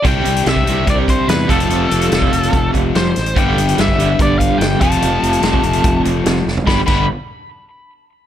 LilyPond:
<<
  \new Staff \with { instrumentName = "Lead electric guitar" } { \time 4/4 \key g \mixolydian \tempo 4 = 145 g''4 e''4 d''8 c''8 b'8 a'8~ | a'2~ a'8 r8 c''4 | g''4 e''4 d''8 f''8 g''8 a''8~ | a''2~ a''8 r4. |
b''8 b''8 r2. | }
  \new Staff \with { instrumentName = "Overdriven electric guitar" } { \clef bass \time 4/4 \key g \mixolydian <c g c' d'>2.~ <c g c' d'>8 <f, c f a c'>8~ | <f, c f a c'>2.~ <f, c f a c'>8 r8 | <g, d g b d'>2.~ <g, d g b d'>8 <f, c f a c'>8~ | <f, c f a c'>2.~ <f, c f a c'>8 r8 |
<g, d g b d' g'>8 <g, d g b d' g'>8 r2. | }
  \new Staff \with { instrumentName = "Overdriven electric guitar" } { \clef bass \time 4/4 \key g \mixolydian <c g c'>4. <c g c'>2 <f, c f>8~ | <f, c f>4 <f, c f>2~ <f, c f>8 r8 | <g, d g>4. <g, d g>2 <f, c f>8~ | <f, c f>4 <f, c f>2~ <f, c f>8 r8 |
<g, d g>8 <g, d g>8 r2. | }
  \new Staff \with { instrumentName = "Fingered electric bass" } { \clef bass \time 4/4 \key g \mixolydian c,8 c,8 c,8 c,8 c,4 e,8 f,,8 | f,,8 f,,8 f,,8 f,,8 f,,8 f,,8 f,,8 a,,8 | g,,8 g,,8 g,,8 g,,8 g,,4 g,,8 f,,8 | f,,8 f,,8 f,,8 f,,8 f,,8 f,,8 f,,8 f,,8 |
g,,8 g,,8 r2. | }
  \new DrumStaff \with { instrumentName = "Drums" } \drummode { \time 4/4 <hh bd>8 hh16 hh16 <hh sn>16 bd16 hh8 <hh bd>8 <hh bd>8 <hh sn>8 <hh bd>16 hh16 | hh8 hh16 hh16 <hh sn>16 bd16 hh16 hh16 <hh bd>8 <hh bd>8 <hh sn>8 <hh sn>16 hh16 | <hh bd>8 hh16 hh16 <hh sn>16 bd16 hh8 <hh bd>8 <hh bd>8 <hh sn>8 <hh bd>16 hh16 | hh8 hh16 hh16 <hh sn>16 bd16 hh16 hh16 <hh bd>8 hh8 <hh sn>8 sn16 tomfh16 |
<bd sn>8 <cymc bd>8 r4 r4 r4 | }
>>